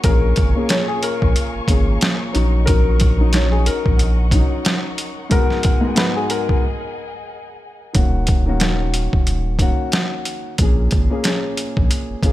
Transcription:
0.00 5.28 A#4 medium
0.00 5.28 C#6 medium
0.00 closed hi-hat medium
0.04 0.34 A#1 loud
0.04 0.51 A#2 medium
0.04 0.52 A#3 medium
0.04 0.52 C#4 medium
0.04 0.53 G#4 loud
0.04 0.66 A#4 medium
0.04 2.33 F5 medium
0.04 2.33 G#5 medium
0.04 kick loud
0.36 0.54 G#1 medium
0.36 kick medium
0.36 closed hi-hat medium
0.54 0.69 A#2 loud
0.54 0.70 A#3 loud
0.54 0.70 C#4 medium
0.54 0.71 G#4 loud
0.69 1.62 A#2 loud
0.69 1.62 A#3 medium
0.69 1.63 C#4 medium
0.69 1.63 G#4 loud
0.69 0.86 C#5 medium
0.69 snare loud
0.69 closed hi-hat loud
0.88 1.01 G#4 medium
1.03 1.51 A#4 medium
1.03 closed hi-hat medium
1.22 1.35 A#1 medium
1.22 kick medium
1.36 closed hi-hat loud
1.55 1.61 G#1 soft
1.67 1.98 G#1 loud
1.67 2.34 A#2 loud
1.67 2.34 A#3 medium
1.67 2.32 C#4 medium
1.67 2.35 G#4 loud
1.67 kick loud
1.67 closed hi-hat medium
2.01 snare loud
2.01 closed hi-hat medium
2.32 3.70 A#1 loud
2.32 2.64 F#3 loud
2.32 2.65 C#4 loud
2.32 2.66 D#4 loud
2.32 5.28 D#5 medium
2.32 7.91 F#5 medium
2.32 closed hi-hat medium
2.66 3.14 F#3 loud
2.66 3.15 C#4 medium
2.66 3.15 D#4 loud
2.66 3.29 A#4 loud
2.66 kick loud
2.66 closed hi-hat loud
3.00 kick loud
3.00 closed hi-hat medium
3.18 3.31 F#3 medium
3.18 3.32 C#4 medium
3.18 3.33 D#4 loud
3.32 4.25 F#3 loud
3.32 4.25 C#4 loud
3.32 4.26 D#4 loud
3.32 3.50 C#5 medium
3.32 snare loud
3.32 closed hi-hat loud
3.52 3.65 G#4 medium
3.66 4.15 A#4 medium
3.66 closed hi-hat medium
3.86 4.45 A#1 medium
3.86 kick medium
3.99 closed hi-hat loud
4.31 5.24 F#3 medium
4.31 5.25 C#4 medium
4.31 5.26 D#4 loud
4.31 kick loud
4.31 closed hi-hat medium
4.65 snare loud
4.65 closed hi-hat medium
4.98 closed hi-hat medium
5.29 5.77 G#2 medium
5.29 5.78 G#3 medium
5.29 5.78 B3 medium
5.29 5.79 F#4 loud
5.29 7.92 G#4 medium
5.29 5.94 A#4 loud
5.29 7.92 D#5 medium
5.29 7.92 G#5 medium
5.29 kick loud
5.29 closed hi-hat loud
5.50 snare soft
5.63 kick loud
5.63 closed hi-hat medium
5.81 5.94 G#2 medium
5.81 5.95 G#3 medium
5.81 5.96 B3 medium
5.81 5.97 F#4 loud
5.95 6.62 G#2 loud
5.95 6.63 G#3 medium
5.95 6.63 B3 medium
5.95 6.64 F#4 loud
5.95 6.14 B4 medium
5.95 snare loud
5.95 closed hi-hat medium
6.16 6.29 G#4 medium
6.30 6.61 A#4 medium
6.30 closed hi-hat medium
6.49 kick medium
7.93 9.08 D#1 loud
7.93 8.41 D#3 medium
7.93 8.42 A#3 medium
7.93 8.42 C#4 medium
7.93 8.43 F#4 loud
7.93 kick loud
7.93 closed hi-hat medium
8.27 kick medium
8.27 closed hi-hat medium
8.46 8.59 D#3 loud
8.46 8.60 A#3 medium
8.46 8.61 C#4 medium
8.46 8.62 F#4 loud
8.60 9.53 D#3 loud
8.60 9.53 A#3 medium
8.60 9.53 C#4 medium
8.60 9.54 F#4 loud
8.60 snare loud
8.60 closed hi-hat loud
8.94 closed hi-hat medium
9.13 9.72 D#1 medium
9.13 kick medium
9.27 closed hi-hat loud
9.59 10.51 D#3 medium
9.59 10.52 A#3 medium
9.59 10.52 C#4 medium
9.59 10.53 F#4 loud
9.59 kick loud
9.59 closed hi-hat medium
9.92 snare loud
9.92 closed hi-hat medium
10.25 closed hi-hat medium
10.58 10.89 A#1 loud
10.58 11.06 A#2 medium
10.58 11.06 A#3 medium
10.58 11.07 C#4 medium
10.58 11.07 G#4 loud
10.58 kick loud
10.58 closed hi-hat loud
10.91 11.09 G#1 medium
10.91 kick medium
10.91 closed hi-hat medium
11.09 11.23 A#2 medium
11.09 11.24 A#3 medium
11.09 11.25 C#4 medium
11.09 11.26 G#4 loud
11.24 12.17 A#2 loud
11.24 12.17 A#3 medium
11.24 12.18 C#4 medium
11.24 12.18 G#4 loud
11.24 snare loud
11.24 closed hi-hat loud
11.57 closed hi-hat medium
11.77 11.90 A#1 medium
11.77 kick medium
11.91 closed hi-hat medium
12.10 12.16 G#1 soft
12.22 12.32 G#1 medium
12.22 12.32 A#2 loud
12.22 12.32 A#3 medium
12.22 12.32 C#4 medium
12.22 12.32 G#4 loud
12.22 kick medium
12.22 closed hi-hat medium

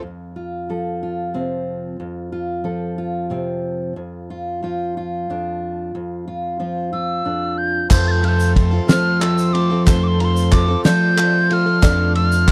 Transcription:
0.03 1.99 F2 soft
0.36 1.02 F4 soft
0.70 2.64 F3 soft
0.70 2.64 A4 soft
1.03 2.32 F4 soft
1.34 1.95 C3 soft
1.34 1.96 C4 soft
2.00 3.96 F2 soft
2.32 2.98 F4 soft
2.64 4.62 F3 soft
2.64 4.30 A4 soft
2.98 4.30 F4 soft
3.30 3.92 C3 soft
3.30 3.93 C4 soft
3.96 5.29 F2 soft
4.30 4.63 F4 soft
4.63 6.59 F3 soft
4.63 4.97 F4 soft
4.97 6.26 F4 soft
5.30 5.94 F2 soft
5.30 5.91 D4 soft
5.95 7.24 F2 medium
6.28 6.59 F4 soft
6.60 7.87 F3 soft
6.60 6.91 F4 soft
6.93 9.87 F4 soft
6.93 7.59 E6 medium
7.25 9.87 F2 soft
7.25 7.87 D4 soft
7.58 7.90 G6 medium
7.89 9.83 F1 medium
7.89 8.78 F2 loud
7.89 9.83 F2 medium
7.89 8.23 F3 medium
7.89 8.67 F3 medium
7.89 8.21 A3 medium
7.89 8.67 A3 medium
7.89 8.67 C4 medium
7.89 8.22 C4 medium
7.89 11.78 F4 medium
7.89 8.23 F4 medium
7.89 12.52 A4 medium
7.89 8.67 A4 medium
7.89 8.24 A4 medium
7.89 11.78 C5 medium
7.89 8.68 C5 medium
7.89 12.52 A5 medium
7.89 8.09 G6 loud
7.89 kick loud
7.89 clap medium
7.89 crash loud
7.89 shaker loud
8.08 8.26 G6 loud
8.08 8.12 A6 medium
8.22 8.54 A3 medium
8.22 8.55 C4 medium
8.22 8.56 F4 medium
8.22 8.56 A4 medium
8.22 8.29 F6 medium
8.22 ride medium
8.28 8.52 G6 loud
8.40 shaker medium
8.55 8.72 A3 medium
8.55 8.72 C4 medium
8.55 8.72 F4 medium
8.55 8.70 A4 medium
8.55 kick medium
8.55 ride medium
8.55 shaker soft
8.71 8.87 C4 soft
8.71 8.88 F4 soft
8.71 8.88 A4 medium
8.88 9.21 F3 medium
8.88 9.65 F3 medium
8.88 9.89 F3 loud
8.88 9.19 A3 medium
8.88 9.65 A3 medium
8.88 9.65 C4 medium
8.88 9.20 C4 medium
8.88 9.21 F4 medium
8.88 9.65 A4 medium
8.88 9.22 A4 medium
8.88 9.66 C5 medium
8.88 9.22 F6 loud
8.88 snare loud
8.88 clap soft
8.88 ride medium
8.88 shaker loud
9.20 9.51 A3 medium
9.20 9.53 C4 medium
9.20 9.54 F4 medium
9.20 9.54 A4 medium
9.20 9.55 E6 medium
9.20 clap loud
9.20 ride medium
9.38 shaker medium
9.53 9.70 A3 medium
9.53 9.70 C4 medium
9.53 9.70 F4 medium
9.53 9.69 A4 medium
9.53 9.86 D6 medium
9.53 ride medium
9.70 9.86 C4 soft
9.70 9.86 F4 medium
9.70 9.86 A4 medium
9.86 11.79 F1 medium
9.86 11.79 F2 medium
9.86 10.75 F2 loud
9.86 10.19 F3 medium
9.86 10.63 F3 medium
9.86 10.18 A3 medium
9.86 10.63 A3 medium
9.86 10.19 C4 medium
9.86 10.64 C4 medium
9.86 10.20 F4 loud
9.86 10.64 A4 medium
9.86 10.20 A4 medium
9.86 10.64 C5 loud
9.86 10.05 C6 loud
9.86 kick loud
9.86 clap medium
9.86 ride medium
9.86 shaker medium
10.04 10.22 C6 loud
10.04 10.09 D6 medium
10.19 10.50 A3 medium
10.19 10.51 C4 medium
10.19 10.53 F4 medium
10.19 10.53 A4 medium
10.19 10.26 A#5 medium
10.19 ride medium
10.25 10.54 C6 loud
10.37 shaker medium
10.52 10.68 A3 medium
10.52 10.69 C4 medium
10.52 10.68 F4 medium
10.52 10.67 A4 medium
10.52 10.84 D6 loud
10.52 kick medium
10.52 clap loud
10.52 ride medium
10.52 shaker soft
10.68 10.84 C4 soft
10.68 10.85 F4 soft
10.68 10.84 A4 medium
10.84 11.61 F3 medium
10.84 11.17 F3 medium
10.84 11.84 F3 medium
10.84 11.61 A3 medium
10.84 11.16 A3 medium
10.84 11.61 C4 medium
10.84 11.17 C4 medium
10.84 11.18 F4 medium
10.84 11.61 A4 medium
10.84 11.18 A4 medium
10.84 11.62 D5 medium
10.84 11.49 G6 loud
10.84 snare loud
10.84 clap soft
10.84 ride medium
10.84 shaker loud
11.17 11.48 A3 medium
11.17 11.49 C4 medium
11.17 11.50 F4 medium
11.17 11.51 A4 medium
11.17 clap loud
11.17 ride medium
11.49 11.66 A3 medium
11.49 11.67 C4 medium
11.49 11.66 F4 medium
11.49 11.65 A4 medium
11.49 11.54 G6 loud
11.49 ride medium
11.53 12.15 F6 loud
11.66 11.83 C4 soft
11.66 11.82 A4 medium
11.82 12.52 F1 medium
11.82 12.52 F2 medium
11.82 12.52 F2 loud
11.82 12.15 F3 medium
11.82 12.52 F3 medium
11.82 12.13 A3 medium
11.82 12.52 A3 medium
11.82 12.52 D4 medium
11.82 12.15 D4 medium
11.82 12.52 F4 medium
11.82 12.15 F4 medium
11.82 12.52 A4 medium
11.82 12.16 A4 medium
11.82 12.52 D5 medium
11.82 kick loud
11.82 clap loud
11.82 ride medium
11.82 shaker loud
12.14 12.46 A3 medium
12.14 12.47 D4 medium
12.14 12.48 F4 medium
12.14 12.49 A4 medium
12.14 12.27 E6 loud
12.14 ride medium
12.27 12.52 F6 loud
12.32 shaker medium
12.47 12.52 A3 medium
12.47 12.52 D4 medium
12.47 kick medium
12.47 clap medium
12.47 ride medium
12.47 shaker soft

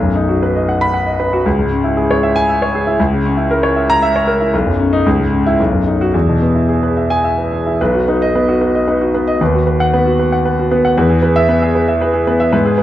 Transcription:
0.00 1.42 B1 medium
0.00 0.24 F#2 medium
0.15 0.37 D#4 medium
0.29 0.50 F#4 medium
0.43 0.63 B4 medium
0.56 0.76 D#5 medium
0.69 0.89 F#5 medium
0.81 1.02 B5 medium
0.94 1.15 F#5 medium
1.07 1.28 D#5 medium
1.20 1.41 B4 medium
1.33 1.46 F#4 medium
1.46 2.95 C#2 medium
1.59 1.80 G#2 medium
1.72 1.92 C#4 medium
1.84 2.05 E4 medium
1.97 2.18 G#4 medium
2.11 2.31 C#5 medium
2.23 2.44 E5 medium
2.36 2.56 G#5 loud
2.49 2.69 E5 medium
2.62 2.82 C#5 medium
2.75 2.94 G#4 medium
2.87 2.99 E4 medium
2.99 4.49 C#2 medium
3.12 3.32 C#3 medium
3.25 3.45 C#4 medium
3.37 3.58 E4 medium
3.51 3.71 A#4 medium
3.63 3.84 C#5 medium
3.76 3.97 E5 medium
3.90 4.10 A#5 loud
4.02 4.22 E5 medium
4.16 4.35 C#5 medium
4.27 4.48 A#4 medium
4.41 4.53 E4 medium
4.53 5.04 B1 medium
4.66 4.87 F#2 medium
4.79 5.00 C#4 medium
4.93 5.06 D#4 medium
5.06 5.58 C#2 medium
5.20 5.41 G#2 medium
5.33 5.54 C#4 medium
5.46 5.59 E4 medium
5.60 6.12 B1 medium
5.73 5.94 F#2 soft
5.87 6.08 D#4 medium
6.01 6.14 F#4 medium
6.14 7.76 E2 medium
6.28 6.50 B2 medium
6.42 6.64 B3 medium
6.55 6.77 E4 soft
6.69 6.91 G#4 medium
6.83 7.05 B4 medium
6.97 7.19 E5 medium
7.10 7.32 G#5 medium
7.24 7.46 E5 medium
7.38 7.60 B4 soft
7.52 7.74 G#4 medium
7.67 7.80 E4 medium
7.81 9.37 B1 medium
7.81 8.03 B4 medium
7.94 8.16 F#4 medium
8.08 8.30 D#4 medium
8.08 8.30 B4 medium
8.22 8.43 D#5 medium
8.35 8.56 B3 medium
8.35 8.56 B4 medium
8.49 8.69 F#4 medium
8.61 8.82 D#4 medium
8.61 8.82 B4 medium
8.75 8.96 D#5 medium
8.88 9.09 D#4 medium
8.88 9.09 B4 medium
9.01 9.22 F#4 medium
9.14 9.35 B3 medium
9.14 9.35 B4 medium
9.28 9.41 D#5 medium
9.41 10.93 D#2 medium
9.41 9.62 B4 medium
9.54 9.75 F#4 medium
9.67 9.88 B4 medium
9.80 10.01 F#5 medium
9.94 10.14 B3 medium
9.94 10.14 B4 medium
10.06 10.27 F#4 medium
10.19 10.40 B4 medium
10.32 10.53 F#5 medium
10.45 10.66 B4 medium
10.59 10.79 F#4 medium
10.71 10.92 B3 medium
10.71 10.92 B4 medium
10.85 10.97 F#5 medium
10.97 12.49 E2 medium
10.97 11.18 B4 medium
11.10 11.30 G#4 medium
11.22 11.43 B4 medium
11.36 11.56 E5 medium
11.49 11.69 B3 medium
11.49 11.70 B4 medium
11.62 11.83 G#4 medium
11.75 11.96 B4 medium
11.88 12.09 E5 medium
12.01 12.22 B4 medium
12.14 12.35 G#4 medium
12.27 12.48 B3 medium
12.27 12.48 B4 medium
12.40 12.53 E5 medium
12.52 12.83 G#2 medium
12.52 12.73 B4 medium
12.66 12.83 G#4 medium
12.78 12.83 B4 medium

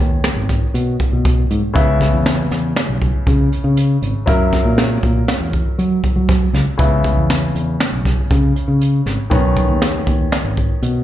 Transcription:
0.00 0.20 D#2 medium
0.00 1.70 D#3 medium
0.00 1.71 B3 medium
0.00 1.71 C#4 medium
0.24 snare loud
0.24 closed hi-hat medium
0.36 0.58 G#1 medium
0.49 kick medium
0.49 snare soft
0.49 closed hi-hat medium
0.74 0.96 B2 medium
0.74 closed hi-hat medium
1.00 kick medium
1.00 closed hi-hat medium
1.13 1.44 B2 medium
1.25 kick loud
1.25 closed hi-hat medium
1.50 1.61 G#2 medium
1.50 closed hi-hat soft
1.73 2.07 C#2 medium
1.73 4.22 C#3 medium
1.73 4.23 B3 medium
1.73 4.23 E4 medium
1.73 kick medium
1.73 closed hi-hat medium
2.01 kick medium
2.01 snare soft
2.01 closed hi-hat medium
2.13 2.45 E2 medium
2.26 snare loud
2.26 closed hi-hat medium
2.51 2.72 E2 medium
2.51 snare soft
2.51 closed hi-hat medium
2.76 snare medium
2.76 closed hi-hat medium
2.89 3.10 B1 medium
3.02 kick medium
3.02 closed hi-hat medium
3.27 3.48 C#3 medium
3.27 kick loud
3.27 closed hi-hat medium
3.52 closed hi-hat medium
3.64 3.96 C#3 medium
3.77 closed hi-hat medium
4.02 4.13 G#1 medium
4.02 closed hi-hat medium
4.26 4.59 F#2 medium
4.26 6.74 F#3 medium
4.26 6.75 E4 medium
4.26 6.75 A#4 medium
4.26 kick loud
4.26 closed hi-hat medium
4.53 kick medium
4.53 snare soft
4.53 closed hi-hat medium
4.65 4.97 A#2 medium
4.78 snare medium
4.78 closed hi-hat medium
5.03 5.24 A#2 medium
5.03 kick medium
5.03 closed hi-hat medium
5.28 snare medium
5.28 closed hi-hat medium
5.40 5.62 E2 medium
5.53 kick medium
5.53 closed hi-hat medium
5.79 6.00 F#3 medium
5.79 closed hi-hat medium
6.04 kick medium
6.04 closed hi-hat medium
6.16 6.48 F#3 medium
6.29 kick loud
6.29 snare soft
6.29 closed hi-hat medium
6.53 6.64 C#2 medium
6.53 snare soft
6.53 closed hi-hat medium
6.77 7.11 C#2 medium
6.77 9.26 C#3 medium
6.77 9.27 B3 medium
6.77 9.27 E4 medium
6.77 kick loud
6.77 closed hi-hat medium
7.04 kick medium
7.04 closed hi-hat medium
7.17 7.49 E2 medium
7.30 snare medium
7.30 closed hi-hat medium
7.55 7.76 E2 medium
7.55 closed hi-hat medium
7.80 snare loud
7.80 closed hi-hat medium
7.92 8.14 B1 medium
8.05 kick medium
8.05 snare soft
8.05 closed hi-hat medium
8.31 8.52 C#3 medium
8.31 kick loud
8.31 closed hi-hat medium
8.56 closed hi-hat medium
8.68 9.00 C#3 medium
8.81 closed hi-hat medium
9.06 9.16 G#1 medium
9.06 snare soft
9.06 closed hi-hat medium
9.30 9.63 B1 loud
9.30 11.04 D#3 medium
9.30 11.04 B3 medium
9.30 11.04 C#4 medium
9.30 kick loud
9.30 closed hi-hat medium
9.57 kick medium
9.57 closed hi-hat medium
9.69 10.01 D#2 medium
9.82 snare loud
9.82 closed hi-hat medium
10.07 10.28 D#2 medium
10.07 kick medium
10.07 closed hi-hat medium
10.32 snare loud
10.32 closed hi-hat medium
10.44 10.66 G#1 medium
10.57 kick medium
10.57 closed hi-hat soft
10.82 11.04 B2 medium
10.82 closed hi-hat medium

